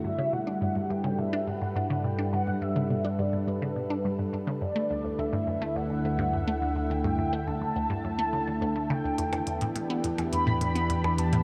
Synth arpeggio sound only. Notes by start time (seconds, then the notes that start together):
0.04 G2
0.18 C#3
0.33 B2
0.47 D4
0.61 G2
0.75 G2
0.90 G2
1.04 C#3
1.18 B2
1.33 D4
1.47 G2
1.62 G2
1.76 G2
1.90 C#3
2.04 B2
2.19 D4
2.33 G2
2.47 G2
2.62 G2
2.76 C#3
2.90 B2
3.04 D4
3.19 G2
3.33 G2
3.47 G2
3.62 C#3
3.76 B2
3.90 D4
4.04 G2
4.19 G2
4.33 G2
4.47 C#3
4.61 F#2
4.76 A3
4.90 D2
5.04 D2
5.19 D2
5.33 G2
5.47 F#2
5.62 A3
5.76 D2
5.90 D2
6.05 D2
6.19 G2
6.33 F#2
6.47 A3
6.62 D2
6.76 D2
6.90 D2
7.04 G2
7.19 F#2
7.33 A3
7.47 D2
7.61 D2
7.76 D2
7.90 G2
8.04 F#2
8.19 A3
8.33 C#3
8.47 D3
8.61 D2
8.76 A3
8.90 C#3
9.04 D2
9.18 E2
9.33 E2
9.47 E2
9.61 A2
9.75 A2
9.90 B3
10.04 E2
10.18 E2
10.33 E2
10.47 A2
10.61 A2
10.75 B3
10.90 E2
11.04 E2
11.18 E2
11.33 A2